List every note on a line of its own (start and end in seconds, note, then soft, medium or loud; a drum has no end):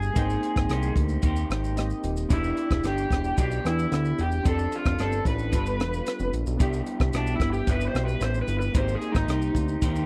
0.00 0.11 G1 medium
0.00 0.15 G3 medium
0.00 0.11 C4 medium
0.00 0.12 D4 medium
0.00 0.13 E4 medium
0.00 0.16 E4 medium
0.00 0.14 G4 medium
0.00 0.70 G4 medium
0.00 0.94 G#4 medium
0.00 shaker soft
0.13 0.38 G#1 loud
0.13 0.69 G#3 medium
0.13 1.73 A#3 medium
0.13 0.68 A#3 medium
0.13 0.22 B3 soft
0.13 0.69 D#4 medium
0.13 1.74 D#4 medium
0.13 0.70 C5 medium
0.13 kick loud
0.13 closed hi-hat medium
0.13 shaker medium
0.18 1.76 C4 medium
0.18 1.49 G5 medium
0.30 shaker soft
0.43 closed hi-hat soft
0.43 shaker soft
0.56 0.67 G#1 loud
0.56 kick medium
0.56 cross-stick medium
0.56 shaker soft
0.69 0.91 C2 medium
0.69 1.21 A#3 medium
0.69 1.23 D#4 medium
0.69 1.25 G4 medium
0.69 1.24 C5 medium
0.69 cross-stick medium
0.69 closed hi-hat medium
0.69 shaker medium
0.83 shaker medium
0.96 1.18 D2 medium
0.96 kick medium
0.96 closed hi-hat soft
0.96 shaker soft
1.09 shaker soft
1.22 1.45 D#2 medium
1.22 2.30 A#3 medium
1.22 2.30 D#4 medium
1.22 2.31 G4 medium
1.22 kick medium
1.22 closed hi-hat medium
1.22 shaker medium
1.27 2.33 C5 medium
1.36 shaker medium
1.50 1.93 G#1 medium
1.50 1.75 G5 medium
1.50 cross-stick medium
1.50 closed hi-hat medium
1.50 shaker medium
1.64 shaker medium
1.76 2.30 A#3 medium
1.76 2.31 C4 soft
1.76 2.31 D#4 medium
1.76 2.32 G4 medium
1.76 2.27 D#5 medium
1.76 cross-stick medium
1.76 closed hi-hat medium
1.76 shaker medium
1.90 shaker soft
2.04 2.25 D#1 medium
2.04 closed hi-hat soft
2.04 shaker medium
2.17 shaker soft
2.29 2.52 E1 loud
2.29 2.82 E3 medium
2.29 3.61 B3 medium
2.29 2.83 B3 medium
2.29 3.62 D4 medium
2.29 2.85 D4 medium
2.29 3.63 E4 medium
2.29 2.85 G4 medium
2.29 kick loud
2.29 closed hi-hat medium
2.29 shaker medium
2.33 2.82 E4 medium
2.33 3.64 G4 medium
2.44 shaker soft
2.57 closed hi-hat soft
2.57 shaker soft
2.71 2.82 E1 medium
2.71 kick medium
2.71 cross-stick medium
2.71 shaker soft
2.83 3.06 G1 medium
2.83 3.35 E3 medium
2.83 3.37 B3 medium
2.83 3.39 D4 medium
2.83 3.39 G4 medium
2.83 cross-stick loud
2.83 closed hi-hat medium
2.83 shaker medium
2.98 shaker medium
3.10 3.32 E1 medium
3.10 kick medium
3.10 cross-stick medium
3.10 closed hi-hat soft
3.10 shaker soft
3.24 shaker soft
3.36 3.59 B1 loud
3.36 4.44 E3 medium
3.36 4.45 B3 medium
3.36 kick medium
3.36 closed hi-hat medium
3.36 shaker medium
3.40 4.46 D4 medium
3.40 3.64 G4 medium
3.40 4.46 G4 medium
3.51 shaker medium
3.64 3.86 E2 medium
3.64 4.45 B3 soft
3.64 4.43 D4 soft
3.64 4.46 E4 soft
3.64 4.22 E4 medium
3.64 4.45 G4 medium
3.64 cross-stick medium
3.64 closed hi-hat soft
3.64 shaker medium
3.79 shaker medium
3.92 4.13 D2 medium
3.92 cross-stick medium
3.92 closed hi-hat medium
3.92 shaker medium
4.05 shaker soft
4.18 4.40 E1 medium
4.18 4.48 G4 medium
4.18 closed hi-hat medium
4.18 shaker soft
4.32 shaker soft
4.43 4.67 F1 loud
4.43 4.98 F3 medium
4.43 5.50 C4 medium
4.43 4.98 C4 medium
4.43 5.50 D4 medium
4.43 4.99 D4 medium
4.43 5.51 G4 medium
4.43 5.00 A4 medium
4.43 kick loud
4.43 closed hi-hat medium
4.43 shaker medium
4.48 4.74 A4 loud
4.48 5.52 A4 medium
4.59 shaker soft
4.72 5.02 F4 medium
4.72 closed hi-hat soft
4.72 shaker soft
4.85 4.96 F1 loud
4.85 kick medium
4.85 cross-stick loud
4.85 shaker soft
4.99 5.21 G1 medium
4.99 5.51 F3 soft
4.99 5.53 C4 medium
4.99 5.53 D4 medium
4.99 5.27 A4 loud
4.99 5.54 A4 medium
4.99 cross-stick medium
4.99 closed hi-hat medium
4.99 shaker medium
5.12 shaker medium
5.25 5.54 A1 medium
5.25 6.30 B4 loud
5.25 kick medium
5.25 closed hi-hat soft
5.25 shaker soft
5.39 shaker soft
5.50 5.81 G1 medium
5.50 6.59 G3 medium
5.50 6.56 B3 medium
5.50 6.58 D4 medium
5.50 6.59 D4 medium
5.50 6.59 F4 medium
5.50 kick medium
5.50 closed hi-hat medium
5.50 shaker medium
5.55 6.60 F4 medium
5.55 6.60 A4 medium
5.55 6.61 B4 medium
5.66 shaker medium
5.80 6.01 E1 medium
5.80 cross-stick medium
5.80 closed hi-hat medium
5.80 shaker medium
5.94 shaker medium
6.06 cross-stick medium
6.06 closed hi-hat medium
6.06 shaker medium
6.19 6.31 F1 loud
6.19 shaker soft
6.33 6.44 A#1 medium
6.33 closed hi-hat soft
6.33 shaker medium
6.46 6.58 B1 medium
6.46 shaker soft
6.57 6.82 C2 loud
6.57 7.14 C3 medium
6.57 7.13 G3 medium
6.57 8.70 B3 medium
6.57 7.13 B3 medium
6.57 8.71 D4 medium
6.57 7.14 E4 medium
6.57 8.71 E4 medium
6.57 7.15 G4 medium
6.57 kick loud
6.57 closed hi-hat medium
6.57 shaker medium
6.62 8.72 G4 medium
6.73 shaker soft
6.87 closed hi-hat soft
6.87 shaker soft
7.00 7.11 C2 medium
7.00 kick medium
7.00 cross-stick medium
7.00 shaker medium
7.13 7.35 B1 medium
7.13 7.67 G3 medium
7.13 7.67 B3 medium
7.13 7.34 D4 medium
7.13 7.68 E4 medium
7.13 7.70 G4 medium
7.13 cross-stick loud
7.13 closed hi-hat medium
7.13 shaker medium
7.27 shaker medium
7.35 7.52 E4 medium
7.40 7.62 G1 medium
7.40 kick medium
7.40 cross-stick medium
7.40 closed hi-hat soft
7.40 shaker soft
7.53 7.70 G4 medium
7.53 shaker soft
7.67 7.89 G1 medium
7.67 8.75 C3 medium
7.67 8.74 G3 medium
7.67 8.75 B3 medium
7.67 8.75 E4 medium
7.67 8.75 G4 medium
7.67 7.87 B4 medium
7.67 kick medium
7.67 closed hi-hat medium
7.67 shaker medium
7.81 shaker medium
7.88 8.05 C5 medium
7.94 8.16 B1 medium
7.94 cross-stick medium
7.94 closed hi-hat medium
7.94 shaker medium
8.06 8.23 B4 medium
8.06 shaker medium
8.21 8.43 A1 medium
8.21 8.41 C5 medium
8.21 cross-stick medium
8.21 closed hi-hat medium
8.21 shaker medium
8.34 shaker soft
8.42 8.58 B4 medium
8.48 8.70 G1 medium
8.48 closed hi-hat medium
8.48 shaker soft
8.60 8.77 B4 medium
8.60 shaker soft
8.72 8.96 G#1 loud
8.72 9.29 G#3 medium
8.72 10.06 A#3 medium
8.72 9.27 A#3 medium
8.72 10.06 C4 medium
8.72 10.06 D#4 medium
8.72 9.28 D#4 medium
8.72 9.29 G4 medium
8.72 kick loud
8.72 closed hi-hat medium
8.72 shaker medium
8.76 10.06 G4 medium
8.76 9.29 C5 medium
8.76 8.93 C5 loud
8.88 shaker medium
8.95 9.13 G#4 medium
9.02 closed hi-hat soft
9.02 shaker soft
9.12 9.26 G#1 loud
9.12 10.06 D#4 medium
9.12 kick medium
9.12 shaker soft
9.16 cross-stick medium
9.28 9.50 C2 medium
9.28 9.81 A#3 medium
9.28 9.81 D#4 medium
9.28 9.82 G4 medium
9.28 9.82 C5 medium
9.28 cross-stick loud
9.28 closed hi-hat medium
9.28 shaker medium
9.42 shaker medium
9.54 9.76 D2 medium
9.54 kick medium
9.54 closed hi-hat soft
9.54 shaker soft
9.68 shaker soft
9.82 10.04 D#2 medium
9.82 10.06 G#3 medium
9.82 10.06 A#3 medium
9.82 10.06 D#4 medium
9.82 10.06 G4 medium
9.82 10.06 C5 loud
9.82 kick loud
9.82 closed hi-hat medium
9.82 shaker medium
9.96 shaker medium